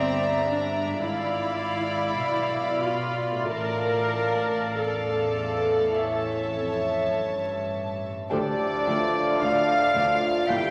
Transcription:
0.00 1.00 G1 medium
0.00 0.99 G2 soft
0.00 1.00 G2 medium
0.00 0.50 C4 medium
0.00 0.88 D4 soft
0.00 1.04 E4 soft
0.00 1.06 A#4 soft
0.00 1.00 D5 medium
0.00 1.00 E5 medium
0.00 0.99 A#5 medium
0.49 1.04 D4 medium
0.85 3.46 G#2 soft
0.89 3.35 D4 soft
0.94 3.39 F4 soft
0.99 3.53 B4 soft
1.03 2.14 G#1 medium
1.03 2.14 G#2 medium
1.03 2.78 E4 medium
1.03 3.46 D5 medium
1.03 3.48 F5 medium
1.03 3.50 B5 medium
2.16 3.50 B1 medium
2.16 3.50 B2 soft
2.81 3.50 F4 medium
3.31 5.77 A2 soft
3.36 5.94 D4 soft
3.40 5.96 F4 soft
3.45 5.91 A4 soft
3.49 5.92 A1 medium
3.49 4.62 A2 medium
3.49 4.74 A#4 medium
3.49 4.74 D5 medium
3.49 4.74 F5 medium
3.49 4.75 A5 medium
4.76 6.50 E2 medium
4.76 7.13 A4 medium
4.76 5.94 D5 medium
4.76 5.94 F5 medium
4.76 5.94 A5 medium
5.79 8.26 A2 soft
5.83 8.29 C#4 soft
5.87 8.31 E4 soft
5.92 9.82 A4 soft
5.92 8.09 C#5 medium
5.92 8.09 E5 medium
5.96 8.06 A1 medium
5.96 8.06 A5 medium
6.54 7.13 F2 medium
7.13 8.31 G2 medium
8.29 8.39 D2 medium
8.29 8.53 D2 medium
8.29 10.44 A2 medium
8.29 10.53 D3 medium
8.29 10.44 F3 medium
8.29 8.40 F3 medium
8.29 10.44 A3 medium
8.29 8.40 A3 medium
8.29 10.44 D4 medium
8.29 8.38 D4 medium
8.29 8.88 G4 medium
8.29 8.38 A4 medium
8.29 9.42 A4 medium
8.29 9.37 D5 loud
8.29 9.37 D5 medium
8.86 8.95 D2 medium
8.86 9.08 D2 medium
8.86 8.95 D2 medium
8.86 8.95 F3 medium
8.86 10.52 A3 soft
8.86 8.96 A3 medium
8.86 8.95 D4 medium
8.86 9.43 F4 medium
8.86 8.94 A4 medium
9.40 9.49 D2 medium
9.40 9.62 D2 medium
9.40 9.49 F3 medium
9.40 9.50 A3 medium
9.40 9.48 D4 medium
9.40 9.93 D4 medium
9.40 10.53 F4 medium
9.40 9.49 A4 medium
9.40 10.49 D5 medium
9.40 10.48 F5 loud
9.40 10.49 F5 medium
9.94 10.02 D2 medium
9.94 10.16 D2 medium
9.94 10.03 F3 medium
9.94 10.04 A3 medium
9.94 10.53 D4 medium
9.94 10.03 D4 medium
9.94 10.47 F4 medium
9.94 10.03 A4 medium
10.47 10.70 G1 medium
10.47 10.57 G1 medium
10.47 10.71 G2 medium
10.47 10.57 G2 medium
10.47 10.71 G2 medium
10.47 10.57 E3 medium
10.47 10.71 G3 medium
10.47 10.71 A#3 medium
10.47 10.57 A#3 medium
10.47 10.71 E4 medium
10.47 10.56 E4 medium
10.47 10.71 E4 medium
10.47 10.56 G4 medium
10.47 10.71 E5 medium
10.47 10.71 G5 loud
10.47 10.71 G5 medium

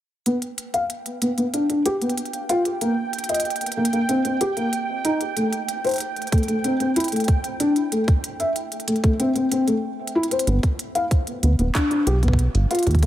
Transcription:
0.26 0.34 B3 medium
0.26 9.83 G5 medium
0.26 closed hi-hat medium
0.42 closed hi-hat soft
0.58 closed hi-hat medium
0.74 0.82 F5 medium
0.74 closed hi-hat soft
0.90 closed hi-hat medium
1.06 closed hi-hat soft
1.22 1.27 B3 medium
1.22 closed hi-hat medium
1.38 1.43 B3 medium
1.38 closed hi-hat soft
1.54 1.62 D4 medium
1.54 closed hi-hat medium
1.70 1.78 D4 medium
1.70 closed hi-hat soft
1.86 1.94 G4 medium
1.86 closed hi-hat medium
2.02 2.10 B3 medium
2.02 closed hi-hat soft
2.10 closed hi-hat soft
2.18 closed hi-hat medium
2.25 closed hi-hat soft
2.33 closed hi-hat soft
2.49 2.62 F4 loud
2.49 closed hi-hat medium
2.65 closed hi-hat soft
2.81 2.89 A#3 medium
2.81 closed hi-hat medium
3.13 closed hi-hat soft
3.19 closed hi-hat soft
3.24 closed hi-hat medium
3.29 3.37 D#5 medium
3.29 closed hi-hat medium
3.34 closed hi-hat medium
3.40 closed hi-hat medium
3.45 closed hi-hat soft
3.50 closed hi-hat soft
3.56 closed hi-hat soft
3.61 closed hi-hat soft
3.66 closed hi-hat soft
3.72 closed hi-hat medium
3.77 3.82 A#3 medium
3.85 closed hi-hat medium
3.93 3.98 A#3 medium
3.93 closed hi-hat soft
4.09 4.17 C4 medium
4.09 closed hi-hat medium
4.25 4.33 C4 medium
4.25 closed hi-hat soft
4.41 4.49 G4 medium
4.41 closed hi-hat medium
4.57 4.65 A#3 medium
4.57 closed hi-hat soft
4.73 closed hi-hat medium
5.05 5.17 D#4 medium
5.05 closed hi-hat medium
5.21 closed hi-hat soft
5.37 5.45 A3 medium
5.37 closed hi-hat medium
5.53 closed hi-hat soft
5.69 closed hi-hat medium
5.84 5.93 C5 medium
5.84 closed hi-hat soft
5.87 closed hi-hat soft
5.89 closed hi-hat soft
5.91 closed hi-hat soft
5.94 closed hi-hat soft
5.96 closed hi-hat soft
5.98 closed hi-hat soft
6.00 closed hi-hat medium
6.16 closed hi-hat soft
6.22 closed hi-hat soft
6.27 closed hi-hat soft
6.32 6.37 A3 medium
6.32 kick loud
6.32 closed hi-hat medium
6.38 closed hi-hat soft
6.43 closed hi-hat soft
6.48 6.53 A3 medium
6.48 closed hi-hat soft
6.64 6.72 C4 medium
6.64 closed hi-hat medium
6.80 6.88 C4 medium
6.80 closed hi-hat soft
6.96 7.04 E4 loud
6.96 closed hi-hat medium
7.00 closed hi-hat medium
7.04 closed hi-hat medium
7.08 closed hi-hat soft
7.12 7.20 A3 medium
7.12 closed hi-hat soft
7.16 closed hi-hat soft
7.20 closed hi-hat soft
7.24 closed hi-hat soft
7.28 kick loud
7.28 closed hi-hat medium
7.44 closed hi-hat soft
7.60 7.72 D4 loud
7.60 closed hi-hat medium
7.76 closed hi-hat soft
7.92 8.00 A3 medium
7.92 closed hi-hat medium
8.08 kick loud
8.08 closed hi-hat soft
8.24 closed hi-hat medium
8.40 8.48 E5 medium
8.40 closed hi-hat soft
8.56 closed hi-hat medium
8.72 closed hi-hat soft
8.80 closed hi-hat soft
8.88 8.93 A3 medium
8.88 closed hi-hat medium
8.96 closed hi-hat soft
9.04 9.09 A3 medium
9.04 kick loud
9.04 closed hi-hat soft
9.20 9.28 C4 medium
9.20 closed hi-hat medium
9.36 9.44 C4 medium
9.36 closed hi-hat soft
9.52 9.64 C4 medium
9.52 closed hi-hat medium
9.67 9.72 A3 medium
9.67 closed hi-hat soft
10.07 closed hi-hat medium
10.15 10.23 E4 loud
10.23 closed hi-hat medium
10.31 10.43 C5 medium
10.31 closed hi-hat medium
10.39 closed hi-hat medium
10.47 10.60 G1 loud
10.47 10.55 B3 medium
10.47 closed hi-hat medium
10.63 kick loud
10.63 closed hi-hat soft
10.79 closed hi-hat medium
10.95 11.03 F5 medium
10.95 closed hi-hat soft
11.11 kick loud
11.11 closed hi-hat medium
11.27 closed hi-hat soft
11.43 11.55 D2 medium
11.43 11.48 B3 medium
11.43 closed hi-hat medium
11.59 11.71 D1 medium
11.59 11.64 B3 medium
11.59 closed hi-hat soft
11.75 11.83 D4 medium
11.75 kick loud
11.75 clap loud
11.75 closed hi-hat medium
11.91 11.99 D4 medium
11.91 closed hi-hat soft
12.07 12.49 B1 medium
12.07 12.15 G4 loud
12.07 closed hi-hat medium
12.23 12.31 B3 medium
12.23 kick medium
12.23 closed hi-hat soft
12.28 kick medium
12.33 kick medium
12.39 closed hi-hat medium
12.55 12.67 G1 medium
12.55 closed hi-hat soft
12.71 12.83 F4 loud
12.71 closed hi-hat medium
12.75 closed hi-hat medium
12.79 closed hi-hat medium
12.83 closed hi-hat soft
12.87 13.06 D#2 loud
12.87 kick soft
12.87 closed hi-hat soft
12.91 kick medium
12.91 closed hi-hat soft
12.95 closed hi-hat soft
12.99 closed hi-hat soft
13.03 13.06 A#3 medium
13.03 kick medium
13.03 closed hi-hat medium

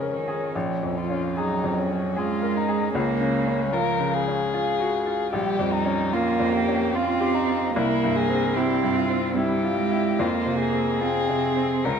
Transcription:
0.00 0.50 F2 soft
0.00 0.11 C#3 soft
0.00 0.57 F3 soft
0.00 0.54 C#4 soft
0.00 0.57 C#4 soft
0.00 0.28 G#4 soft
0.00 0.28 A#4 soft
0.12 0.55 D#3 medium
0.28 0.55 G#4 soft
0.54 2.91 A#1 soft
0.54 1.39 F3 medium
0.54 0.99 C#4 soft
0.83 1.26 F2 soft
0.97 1.38 F4 soft
1.10 1.53 C#4 soft
1.37 2.17 F#3 medium
1.37 1.80 D#4 soft
1.37 1.80 G#4 soft
1.64 2.06 F2 soft
1.79 2.20 C#4 soft
1.90 2.32 C#4 soft
2.16 2.94 G#3 medium
2.16 2.59 F4 soft
2.16 2.58 G#4 soft
2.42 2.68 A#4 soft
2.57 2.94 D#4 soft
2.68 2.94 G#4 soft
2.94 5.30 C#2 soft
2.94 3.74 A#3 medium
2.94 3.75 C#4 soft
3.21 3.63 C#3 soft
3.47 3.89 C#4 soft
3.72 4.54 F3 medium
3.72 4.16 F4 soft
3.72 4.14 A#4 medium
3.99 4.43 C#3 soft
4.13 5.32 G#4 medium
4.28 4.71 C#4 soft
4.54 4.97 F4 soft
4.80 5.07 F#4 soft
5.06 5.33 F4 soft
5.33 7.70 A#1 soft
5.33 6.14 G3 medium
5.33 5.74 G4 medium
5.59 6.02 F2 soft
5.73 6.14 D#4 medium
5.85 6.28 C#4 soft
6.13 6.95 A#3 medium
6.13 6.54 F4 soft
6.13 6.56 F4 soft
6.40 6.83 F2 soft
6.52 6.97 G4 medium
6.68 7.10 C#4 soft
6.94 7.73 C4 medium
6.94 7.37 F4 soft
6.94 7.36 F4 medium
7.21 7.47 G4 soft
7.34 7.74 D#4 medium
7.49 7.75 F4 soft
7.74 10.15 C2 soft
7.74 8.55 A#3 medium
7.74 8.18 E4 medium
8.04 8.45 G2 soft
8.16 8.58 G#4 medium
8.29 8.72 C4 soft
8.53 9.36 C4 medium
8.53 8.98 E4 soft
8.53 8.97 G4 soft
8.83 9.25 G2 soft
8.96 9.36 F4 soft
9.10 9.52 C4 soft
9.35 9.75 G3 medium
9.35 9.80 E4 soft
9.35 10.22 G4 medium
9.64 9.91 F4 soft
9.75 10.20 G#3 medium
9.91 10.18 E4 soft
10.19 11.81 F2 soft
10.19 11.03 A#3 medium
10.19 10.60 F4 soft
10.46 10.90 C3 soft
10.60 11.86 G#4 medium
10.73 11.17 C4 soft
11.01 11.85 C4 medium
11.01 11.45 F4 soft
11.29 11.74 C3 soft
11.56 11.85 C4 soft
11.84 12.00 C#2 soft
11.84 12.00 C#4 medium
11.84 12.00 A#4 medium

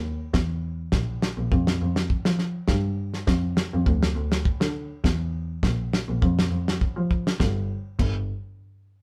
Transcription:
0.00 0.15 D#2 medium
0.34 0.82 E2 medium
0.34 kick medium
0.34 snare medium
0.92 1.17 A#1 medium
0.92 kick medium
0.92 snare medium
1.22 snare medium
1.37 1.49 A#1 medium
1.52 1.76 F2 medium
1.52 kick medium
1.67 snare medium
1.82 2.06 F2 medium
1.96 snare medium
2.10 kick medium
2.25 2.50 F3 medium
2.25 snare medium
2.39 snare soft
2.68 3.17 G2 medium
2.68 kick medium
2.68 snare medium
3.14 snare soft
3.27 3.52 F2 medium
3.27 kick medium
3.27 snare medium
3.57 snare medium
3.73 3.85 F2 medium
3.86 4.10 D2 loud
3.86 kick medium
4.03 snare medium
4.15 4.40 D2 medium
4.32 snare medium
4.45 kick medium
4.60 4.85 D3 medium
4.60 snare medium
5.04 5.52 E2 loud
5.04 kick medium
5.04 snare medium
5.63 5.88 A#1 medium
5.63 kick medium
5.63 snare medium
5.93 snare medium
6.08 6.20 A#1 medium
6.22 6.46 F2 loud
6.22 kick medium
6.39 snare medium
6.51 6.75 F2 medium
6.68 snare medium
6.81 kick medium
6.97 7.21 F3 medium
7.11 kick medium
7.27 snare medium
7.40 7.57 G1 medium
7.40 kick medium
7.40 snare medium
7.99 8.27 G1 medium
7.99 kick medium
7.99 crash medium

